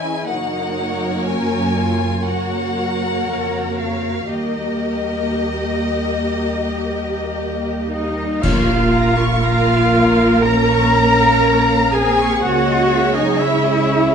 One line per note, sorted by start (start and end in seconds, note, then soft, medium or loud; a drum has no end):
0.00 0.26 E3 soft
0.00 0.30 E3 soft
0.00 0.26 C#4 medium
0.00 0.29 E4 medium
0.00 0.29 D#5 medium
0.00 0.29 D#5 soft
0.00 0.26 G#5 medium
0.06 0.30 G#4 soft
0.29 3.23 F#2 medium
0.29 4.12 C#3 soft
0.29 2.24 F#3 medium
0.29 4.12 A#3 medium
0.29 2.24 A#3 medium
0.29 1.28 D#4 soft
0.29 2.23 A#4 medium
0.29 2.24 C#5 medium
0.29 1.26 F#5 medium
1.28 1.77 C#4 medium
1.28 2.25 G#5 medium
1.78 2.28 F4 medium
2.26 4.26 A#3 soft
2.26 2.77 F#4 soft
2.26 4.26 F#4 medium
2.26 4.25 A#4 soft
2.26 4.25 C#5 soft
2.26 3.78 F#5 medium
2.76 4.29 A#4 soft
3.27 4.30 F2 medium
3.78 4.29 F5 medium
4.29 8.18 D#2 soft
4.29 7.88 G3 soft
4.29 7.88 A#3 soft
4.29 8.18 A#3 medium
4.29 7.88 G4 medium
4.29 8.19 G4 soft
4.29 8.19 A#4 soft
4.29 8.22 D#5 medium
4.29 7.92 D#5 medium
7.92 8.39 G3 medium
7.92 8.39 D#4 medium
7.92 8.44 D#5 medium
7.92 8.40 D#5 medium
8.41 12.38 A#1 medium
8.41 9.89 A#2 medium
8.41 9.41 A#3 medium
8.41 12.38 A#3 medium
8.41 9.40 F4 medium
8.41 12.38 A#4 medium
8.41 8.66 C#5 medium
8.41 9.41 F5 medium
8.41 8.66 F5 medium
8.41 9.41 F5 medium
8.41 concert bass drum medium
8.41 crash medium
8.67 8.92 F5 medium
8.93 9.18 A#5 medium
9.17 9.42 C#6 medium
9.41 10.41 A#3 medium
9.41 10.41 F4 medium
9.41 10.45 F5 medium
9.41 10.41 F5 medium
9.41 10.45 F5 medium
9.41 9.68 A#5 medium
9.68 9.93 F5 medium
9.92 10.18 C#5 medium
10.20 10.44 F5 medium
10.43 11.93 C#4 medium
10.43 11.93 A#4 medium
10.43 11.95 A#5 loud
10.43 11.95 A#5 medium
10.43 11.90 A#5 medium
10.43 10.67 A#5 medium
10.69 10.94 C#6 medium
10.93 11.18 A#5 medium
11.21 11.45 F5 medium
11.44 11.69 C#5 medium
11.69 11.93 F5 soft
11.92 12.42 C4 medium
11.92 12.42 G#4 medium
11.92 12.42 G#5 medium
11.92 12.41 G#5 medium
11.92 12.18 A#5 medium
12.17 12.42 C#6 medium
12.41 14.15 C#2 medium
12.41 13.13 A#3 medium
12.41 14.15 C#4 medium
12.41 13.15 F#4 medium
12.41 14.15 G#4 medium
12.41 13.85 C#5 medium
12.41 13.13 F#5 medium
12.41 13.15 F#5 medium
12.41 13.16 F#5 medium
12.66 12.90 D#5 medium
12.90 13.15 E5 medium
13.14 13.41 F#3 medium
13.14 13.39 D#4 medium
13.14 13.40 D#5 medium
13.14 13.39 D#5 medium
13.14 13.41 D#5 medium
13.14 13.39 G#5 medium
13.38 14.15 G#3 medium
13.38 14.15 E4 medium
13.38 13.63 E5 medium
13.38 14.15 E5 medium
13.63 13.88 D#5 medium
13.86 14.12 C#5 medium